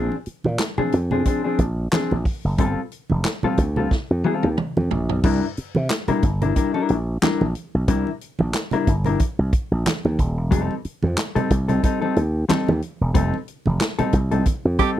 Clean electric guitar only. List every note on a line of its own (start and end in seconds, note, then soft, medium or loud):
0.00 0.13 F3 loud
0.00 0.13 C4 medium
0.00 0.14 D4 loud
0.00 0.14 G#4 loud
0.78 0.95 F3 medium
0.78 0.95 C4 medium
0.78 0.95 D4 medium
0.78 0.94 G#4 medium
1.12 1.25 F3 medium
1.12 1.24 C4 medium
1.12 1.24 D4 medium
1.12 1.24 G#4 medium
1.26 1.42 F3 medium
1.26 1.42 C4 medium
1.26 1.43 D4 medium
1.26 1.43 G#4 medium
1.44 1.62 F3 medium
1.44 1.62 C4 medium
1.44 1.61 D4 medium
1.44 1.61 G#4 medium
1.93 2.13 F3 medium
1.93 2.13 C4 medium
1.93 2.13 D4 medium
1.93 2.13 G#4 medium
2.59 2.79 G3 medium
2.59 2.79 C4 medium
2.59 2.79 F4 medium
2.59 2.80 A4 loud
3.44 3.61 G3 medium
3.44 3.61 C4 medium
3.44 3.61 F4 medium
3.44 3.60 A4 medium
3.77 3.90 G3 medium
3.77 3.90 C4 medium
3.77 3.90 F4 medium
3.77 3.90 A4 medium
4.25 4.46 G3 medium
4.25 4.47 C4 medium
4.25 4.47 F4 medium
4.25 4.47 A4 medium
5.24 5.44 G3 medium
5.24 5.44 D4 loud
5.24 5.45 E4 loud
5.24 5.45 A#4 loud
6.08 6.26 G3 medium
6.08 6.25 D4 medium
6.08 6.25 E4 medium
6.08 6.25 A#4 medium
6.42 6.55 G3 soft
6.42 6.55 D4 medium
6.42 6.55 E4 medium
6.42 6.54 A#4 medium
6.56 6.72 G3 medium
6.56 6.72 D4 medium
6.56 6.72 E4 medium
6.56 6.73 A#4 medium
6.74 6.94 G3 medium
6.74 6.94 D4 medium
6.74 6.93 E4 medium
6.74 6.93 A#4 loud
7.22 7.42 G3 medium
7.22 7.42 D4 medium
7.22 7.43 E4 medium
7.22 7.43 A#4 medium
7.88 8.08 G3 medium
7.88 8.08 D4 medium
7.88 8.09 E4 loud
7.88 8.09 A#4 loud
8.73 8.90 G3 medium
8.73 8.90 D4 medium
8.73 8.89 E4 medium
8.73 8.89 A#4 medium
9.06 9.19 G3 medium
9.06 9.19 D4 medium
9.06 9.19 E4 medium
9.06 9.18 A#4 medium
10.51 10.73 G3 loud
10.51 10.73 C4 medium
10.51 10.73 D#4 medium
10.51 10.74 A4 loud
11.35 11.53 G3 medium
11.35 11.53 C4 medium
11.35 11.52 D#4 medium
11.35 11.52 A4 medium
11.68 11.82 G3 soft
11.68 11.82 C4 medium
11.68 11.82 D#4 medium
11.68 11.81 A4 medium
11.83 11.99 G3 medium
11.83 12.00 C4 medium
11.83 12.00 D#4 medium
11.83 12.00 A4 medium
12.01 12.19 G3 medium
12.01 12.18 C4 medium
12.01 12.18 D#4 loud
12.01 12.18 A4 medium
12.49 12.69 G3 medium
12.49 12.69 C4 medium
12.49 12.69 D#4 medium
12.49 12.70 A4 medium
13.14 13.34 G3 medium
13.14 13.35 C4 medium
13.14 13.35 D#4 loud
13.14 13.35 A4 loud
13.99 14.16 G3 medium
13.99 14.16 C4 medium
13.99 14.15 D#4 medium
13.99 14.15 A4 medium
14.31 14.45 G3 medium
14.31 14.45 C4 medium
14.31 14.44 D#4 medium
14.31 14.44 A4 medium
14.79 14.99 G3 medium
14.79 14.99 C4 medium
14.79 14.99 D#4 medium
14.79 14.99 A4 medium